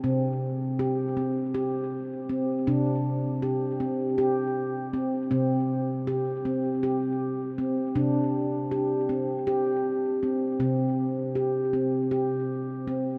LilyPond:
<<
  \new Staff \with { instrumentName = "Handpan" } { \time 7/8 \tempo 4 = 80 c'4 g'8 c'8 g'4 c'8 | d'4 g'8 c'8 g'4 c'8 | c'4 g'8 c'8 g'4 c'8 | d'4 g'8 c'8 g'4 c'8 |
c'4 g'8 c'8 g'4 c'8 | }
  \new Staff \with { instrumentName = "Handpan" } { \clef bass \time 7/8 c2.~ c8 | c2.~ c8 | c2.~ c8 | c2.~ c8 |
c2.~ c8 | }
>>